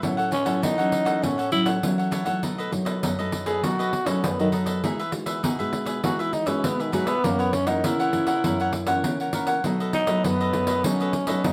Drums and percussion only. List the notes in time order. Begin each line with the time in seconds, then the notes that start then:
0.03 pandeiro
0.19 pandeiro
0.32 pandeiro
0.46 pandeiro
0.63 pandeiro
0.79 pandeiro
0.92 pandeiro
1.06 pandeiro
1.23 pandeiro
1.39 pandeiro
1.52 pandeiro
1.66 pandeiro
1.83 pandeiro
1.99 pandeiro
2.12 pandeiro
2.26 pandeiro
2.43 pandeiro
2.60 pandeiro
2.73 pandeiro
2.86 pandeiro
3.03 pandeiro
3.19 pandeiro
3.32 pandeiro
3.46 pandeiro
3.64 pandeiro
3.80 pandeiro
3.93 pandeiro
4.06 pandeiro
4.24 pandeiro
4.40 pandeiro
4.52 pandeiro
4.67 pandeiro
4.84 pandeiro
4.99 pandeiro
5.12 pandeiro
5.26 pandeiro
5.44 pandeiro
5.60 pandeiro
5.73 pandeiro
5.86 pandeiro
6.04 pandeiro
6.20 pandeiro
6.33 pandeiro
6.47 pandeiro
6.64 pandeiro
6.80 pandeiro
6.93 pandeiro
7.07 pandeiro
7.24 pandeiro
7.40 pandeiro
7.53 pandeiro
7.67 pandeiro
7.84 pandeiro
8.00 pandeiro
8.13 pandeiro
8.27 pandeiro
8.44 pandeiro
8.60 pandeiro
8.73 pandeiro
8.87 pandeiro
9.04 pandeiro
9.20 pandeiro
9.33 pandeiro
9.47 pandeiro
9.64 pandeiro
9.80 pandeiro
9.93 pandeiro
10.07 pandeiro
10.24 pandeiro
10.40 pandeiro
10.53 pandeiro
10.67 pandeiro
10.84 pandeiro
11.00 pandeiro
11.13 pandeiro
11.27 pandeiro
11.44 pandeiro